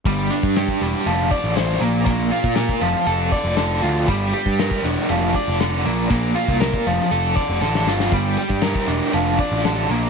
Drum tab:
RD |x-x-x-x-x-x-x-x-|x-x-x-x-x-x-x-x-|x-x-x-x-x-x-x-x-|x-x-x-x-x-x-----|
SD |----o-------oo--|----o-------o---|----o-------o---|----o--o----oooo|
BD |o--o-o----o-----|o--o-o----o-----|o--o-o----o-----|o--o-o----o-----|

RD |x-x-x-x-x-x-x-x-|
SD |----o-------o---|
BD |o--o-o----o-----|